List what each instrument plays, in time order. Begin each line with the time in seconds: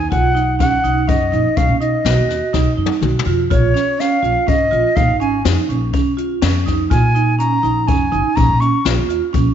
Already playing: flute G#5
0.11 upright bass B1, vibraphone F4, flute F#5, kick, closed hi-hat
0.35 vibraphone D#4, closed hi-hat
0.59 vibraphone C#4, flute F#5, kick, snare, closed hi-hat
0.84 upright bass B1, vibraphone D#4, closed hi-hat
1.08 upright bass F#2, vibraphone C#4, flute D#5, kick, closed hi-hat
1.32 upright bass A#1, vibraphone D#4, closed hi-hat
1.57 upright bass B1, vibraphone C#4, flute F5, kick, closed hi-hat
1.68 upright bass B2
1.80 vibraphone D#4, flute D#5, closed hi-hat
2.05 upright bass B1, vibraphone F#4, snare, closed hi-hat
2.17 upright bass D#2
2.29 vibraphone F#4, snare, closed hi-hat
2.53 upright bass B1, vibraphone D#4, kick, snare
2.77 upright bass F#2, vibraphone D#4
2.86 high tom
3.01 upright bass B1, vibraphone F#4, mid tom
3.19 mid tom
3.26 upright bass F2, vibraphone F4
3.50 upright bass A#1, vibraphone F4, flute C#5, kick, closed hi-hat
3.74 vibraphone C#4, snare, closed hi-hat
3.98 vibraphone C#4, flute F5, snare, closed hi-hat
4.23 upright bass A#1, vibraphone F4, closed hi-hat
4.47 upright bass G#1, vibraphone C#4, flute D#5, kick, closed hi-hat
4.71 upright bass A#1, vibraphone F4, closed hi-hat
4.96 upright bass A#2, vibraphone D#4, flute F5, kick, closed hi-hat
5.08 upright bass G#1
5.20 vibraphone C#4, flute G#5, closed hi-hat
5.45 upright bass F2, vibraphone D#4, snare, closed hi-hat
5.69 upright bass A#1, vibraphone C#4, closed hi-hat
5.93 vibraphone C#4, kick, closed hi-hat
6.17 vibraphone F4, closed hi-hat
6.42 upright bass F2, vibraphone C#4, snare, closed hi-hat
6.66 vibraphone D#4, kick, snare, closed hi-hat
6.90 upright bass A#2, vibraphone F4, flute G#5, kick, closed hi-hat
7.15 vibraphone D#4, closed hi-hat
7.39 vibraphone C#4, flute A#5, closed hi-hat
7.63 upright bass A#1, vibraphone D#4, closed hi-hat
7.87 upright bass F2, vibraphone C#4, flute G#5, kick, closed hi-hat
8.12 upright bass G#1, vibraphone D#4, closed hi-hat
8.36 upright bass A#1, vibraphone C#4, flute A#5, kick, closed hi-hat
8.49 upright bass A#2
8.60 vibraphone C#4, flute C#6, closed hi-hat
8.85 upright bass A#1, vibraphone F4, snare, closed hi-hat
8.97 upright bass D#2
9.09 vibraphone F4, closed hi-hat
9.33 upright bass A#1, vibraphone C#4, kick, closed hi-hat